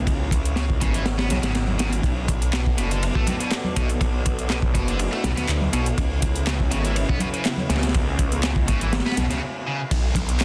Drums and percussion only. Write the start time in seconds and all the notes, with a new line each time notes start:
0.07 kick, closed hi-hat, ride
0.31 kick, closed hi-hat, ride
0.45 closed hi-hat
0.56 snare, closed hi-hat, ride
0.70 kick
0.81 kick, closed hi-hat, ride, high conga
0.94 closed hi-hat, ride
1.06 snare, closed hi-hat, ride
1.19 snare, ride
1.30 snare, closed hi-hat, ride, low conga
1.43 snare, closed hi-hat, ride
1.55 snare, closed hi-hat, ride
1.67 low conga
1.79 snare, closed hi-hat, ride, high conga
1.93 closed hi-hat
2.03 kick, closed hi-hat, ride
2.28 kick, closed hi-hat, ride
2.42 closed hi-hat
2.53 snare, clap, closed hi-hat, ride
2.66 kick
2.78 closed hi-hat, ride, high conga
2.91 closed hi-hat
3.03 closed hi-hat, ride
3.15 kick
3.26 closed hi-hat, ride, low conga
3.40 closed hi-hat
3.51 snare, clap, closed hi-hat, ride
3.64 low conga
3.76 kick, closed hi-hat, ride, high conga
3.90 closed hi-hat
4.01 kick, closed hi-hat, ride
4.25 kick, closed hi-hat, ride
4.39 closed hi-hat
4.50 snare, clap, closed hi-hat, ride
4.62 kick
4.75 kick, closed hi-hat, ride, high conga
4.88 closed hi-hat, ride
4.99 closed hi-hat, ride
5.13 ride
5.24 snare, closed hi-hat, ride, low conga
5.37 snare, closed hi-hat
5.48 clap, closed hi-hat, ride
5.61 low conga
5.73 closed hi-hat, ride, high conga
5.86 closed hi-hat
5.98 kick, closed hi-hat, ride
6.22 kick, closed hi-hat, ride
6.36 closed hi-hat
6.47 snare, clap, closed hi-hat, ride
6.60 kick
6.71 closed hi-hat, ride, high conga
6.85 closed hi-hat
6.96 closed hi-hat, ride
7.09 kick
7.20 closed hi-hat, ride, low conga
7.34 closed hi-hat
7.45 snare, clap, closed hi-hat, ride
7.57 low conga
7.70 snare, closed hi-hat, ride, high conga
7.76 snare, ride
7.83 snare, closed hi-hat, ride
7.88 snare, ride
7.94 kick, closed hi-hat, ride
8.19 kick, closed hi-hat, ride
8.32 closed hi-hat, high conga
8.43 snare, clap, closed hi-hat, ride
8.56 kick
8.68 kick, closed hi-hat, ride, high conga
8.81 closed hi-hat, ride
8.93 snare, closed hi-hat, ride
9.00 snare, ride
9.06 snare, ride
9.11 snare, ride
9.17 snare, closed hi-hat, ride, low conga
9.31 snare, closed hi-hat
9.91 kick, closed hi-hat, ride
10.15 kick, closed hi-hat, ride, high bongo, low conga
10.29 closed hi-hat
10.40 snare, clap, closed hi-hat, ride